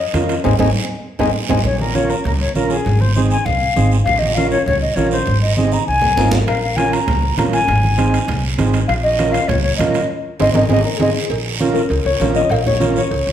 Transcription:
0.00 D#5
0.13 F2 C#4 F4 A#4, high conga, high timbale, low timbale, short guiro
0.29 high timbale, short guiro
0.44 G#1 C4 D#4 G#4 C5 D#5 G#5, low conga, high timbale, long guiro
0.59 G#1 C4 D#4 G#4 C5 D#5 G#5, low conga, high timbale, long guiro
1.19 G#1 C4 D#4 G#4 C5 D#5 G#5, low conga, high timbale, long guiro
1.49 G#1 C4 D#4 G#4 C5 D#5 G#5, low conga, high timbale, long guiro
1.64 A#1 C#5, low conga, long guiro
1.80 A#4, high conga
1.94 C#4 F4 A#4 C#5, high conga, short guiro
2.10 A#4, short guiro
2.24 C#2 A#4, low conga, long guiro
2.40 C#5
2.55 A#1 C#4 F4 A#4, high conga, short guiro
2.70 G#4, short guiro
2.85 G#1, low conga, long guiro
3.01 C5, high conga
3.14 C4 D#4 G#4 C5, high conga, short guiro
3.31 G#5, short guiro
3.45 C2 F5, low conga, long guiro
3.76 G#1 C4 D#4 G#4, high conga, short guiro
3.92 short guiro
4.04 A#1 F5, low conga, long guiro
4.19 D#5, high conga
4.34 C#4 F4 A#4 F5, high conga, short guiro
4.50 C#5, short guiro
4.66 C#2 C#5, low conga, long guiro
4.81 D#5
4.95 A#1 C#4 F4 A#4 C#5, high conga, short guiro
5.11 C5, short guiro
5.26 G#1, low conga, long guiro
5.42 D#5
5.56 C4 D#4 G#4 D#5, high conga, short guiro
5.72 A#5, high conga, short guiro
5.87 C2 G#5, long guiro
6.01 low conga
6.17 G#1 C4 D#4 F4 A#4, low conga, short guiro
6.31 C5, low conga, short guiro
6.47 A#1 A#4 F5, high timbale, long guiro
6.62 F5
6.76 C#4 F4 A#4 G#5, high conga, high timbale, short guiro
6.93 A#5, high timbale, short guiro
7.08 C#2, low conga, high timbale, long guiro
7.38 A#1 C#4 F4 A#4 A#5, high conga, low conga, high timbale, low timbale, short guiro
7.53 G#5, high timbale, short guiro
7.67 G#1, low conga, high timbale
7.83 high conga
7.98 C4 D#4 G#4, high conga, high timbale, short guiro
8.14 high timbale, short guiro
8.28 C2, low conga, high timbale, long guiro
8.58 G#1 C4 D#4 G#4, high conga, high timbale, low timbale, short guiro
8.74 high timbale, short guiro
8.88 A#1 F5, high timbale, long guiro
9.03 D#5
9.19 C#4 F4 A#4, high conga, high timbale, short guiro
9.32 F5, high timbale, short guiro
9.48 C#2 C#5, low conga, high timbale, long guiro
9.62 C#5
9.77 A#1 C#4 F4 A#4 D#5, high conga, low conga, high timbale, low timbale, short guiro
9.94 high timbale, short guiro
10.39 G#1 C4 D#4 G#4 C5 D#5, high conga, high timbale, long guiro
10.54 G#1 C4 D#4 G#4 A#4 D#5, high conga, high timbale, long guiro
10.69 G#1 C4 D#4 G#4 D#5, high conga, high timbale, long guiro
10.85 A#4
10.98 G#1 C4 D#4 G#4 D#5, high conga, high timbale, long guiro
11.30 A#1, cowbell, high conga, long guiro
11.59 C#4 F4 A#4, cowbell, high conga, short guiro
11.74 A#4, short guiro
11.89 C#2, cowbell, high conga, long guiro
12.05 C#2 C#5
12.20 A#1 C#4 F4 A#4, cowbell, high conga, low timbale, short guiro
12.35 D#5, short guiro
12.49 A#1 F5, cowbell, high conga, long guiro
12.66 C#5, low conga
12.80 C#4 F4 A#4, cowbell, high conga, short guiro
12.96 C#5, short guiro
13.11 C#2, cowbell, high conga, long guiro
13.27 C#2

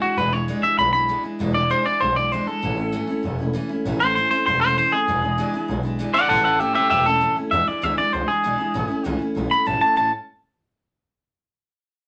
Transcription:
0.01 E3 G#3 D4 E4 F#4
0.17 E1 E2 B2 E3 G#3 D4 E4 B4
0.32 E3 G#3 D4 E4 C#5
0.48 E2 B2 E3 G#3 D4 E4
0.62 E3 G#3 D4 E4 E5, muted upright bass stroke
0.78 B1 E3 G#3 D4 E4 B5
0.92 E3 G#3 D4 E4 B5
1.08 E2 B2 E3 G#3 D4 E4
1.23 E3 G#3 D4 E4, muted upright bass stroke
1.39 E1 E2 B2 E3 G#3 D4 E4
1.54 E3 G#3 D4 E4 D5
1.70 E2 B2 E3 G#3 D4 E4 C5
1.85 E3 G#3 D4 E4 D5, muted upright bass stroke
2.00 B1 E3 G#3 D4 E4 C5
2.16 E3 G#3 D4 E4 D5
2.31 E2 B2 E3 G#3 D4 E4 C5
2.46 E3 G#3 D4 E4 A4, muted upright bass stroke
2.62 A1 A2 E3 A3 C#4 E4
2.76 A3 C#4 E4
2.92 A2 E3 A3 C#4 E4
3.07 A3 C#4 E4, muted upright bass stroke
3.23 E1 E3 A3 C#4 E4
3.38 A3 C#4 E4
3.53 A2 E3 A3 C#4 E4
3.69 A3 C#4 E4, muted upright bass stroke
3.85 A1 A2 E3 A3 C#4 E4
4.00 A3 C#4 E4 C5
4.15 A2 E3 A3 C#4 E4 C5
4.31 A3 C#4 E4 C5, muted upright bass stroke
4.45 E1 E3 A3 C#4 E4 C5
4.61 A3 C#4 E4 C5
4.76 A2 E3 A3 C#4 E4 C5
4.91 A3 C#4 E4 G#4
5.07 E1 E2 B2 E3 G#3 D4 E4
5.22 E3 G#3 D4 E4
5.38 E2 B2 E3 G#3 D4 E4
5.53 E3 G#3 D4 E4, muted upright bass stroke
5.68 B1 E3 G#3 D4 E4
5.83 E3 G#3 D4 E4
5.99 E2 B2 E3 G#3 D4 E4
6.14 E3 G#3 D4 E4 D5 F#5, muted upright bass stroke
6.29 A1 A2 E3 A3 C#4 E4 A4 F#5
6.44 A3 C#4 E4 A4 F#5
6.59 A2 E3 A3 C#4 E4 G4 E5
6.75 A3 C#4 E4 G4 E5
6.90 E1 E3 A3 C#4 E4 G4 E5
7.05 A3 C#4 E4 A4
7.20 A2 E3 A3 C#4 E4
7.36 A3 C#4 E4, muted upright bass stroke
7.51 E2 B2 E3 G#3 D4 E4 E5
7.67 E3 G#3 D4 E4 D5, muted upright bass stroke
7.82 D2 E2 B2 E3 G#3 D4 E4 E5
7.98 E3 G#3 D4 E4 D5, muted upright bass stroke
8.12 C#2 E3 G#3 D4 E4 C5
8.28 E3 G#3 D4 E4 G#4, muted upright bass stroke
8.44 B1 E2 B2 E3 G#3 D4 E4
8.58 E3 G#3 D4 E4
8.74 A1 A2 E3 A3 C#4 E4
8.88 A3 C#4 E4, muted upright bass stroke
9.04 C#2 A2 E3 A3 C#4 E4
9.19 A3 C#4 E4, muted upright bass stroke
9.35 B1 E3 A3 C#4 E4
9.50 A3 C#4 E4 B5, muted upright bass stroke
9.65 A1 A2 E3 A3 C#4 E4 A5
9.80 A3 C#4 E4 A5, muted upright bass stroke
9.96 A1 A2 E3 A3 C#4 E4 A5

